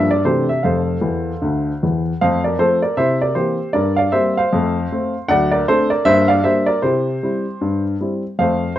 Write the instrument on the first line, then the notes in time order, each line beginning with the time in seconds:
grand piano
Already playing: G2 A#3 D4
0.11 D5
0.25 C3 E3 A3 D4 G4 A4 C5
0.49 E5
0.63 F1 F2 A4 C5 F5
1.01 E2 E3
1.42 D2 D3
1.83 E2 E3
2.21 F2 A3 C5 F5
2.44 A#4 D5
2.59 F3 A3 C4 A4 C5
2.82 A#4 D5
2.97 C3 E4 C5 E5
3.21 A#4 D5
3.35 E3 A#3 C4 G4 C5
3.73 G2 A#4 D5
3.97 D5 F5
4.12 G3 A#3 C4 C5 E5
4.37 C5 F5
4.53 F2 A3
4.92 A3 C4
5.28 D2 F#3 D5 F#5
5.52 A#4 D5
5.68 A3 C4 D4 A4 C5
5.90 A#4 D5
6.05 G2 A#3 C5 E5
6.28 D5 F5
6.44 G3 A#3 D4 C5 E5
6.66 A#4 D5
6.82 C3 E4 G4 C5
7.23 G3 C4 E4
7.61 G2
8.01 G3 C4 E4
8.39 F2 A3 C5 F5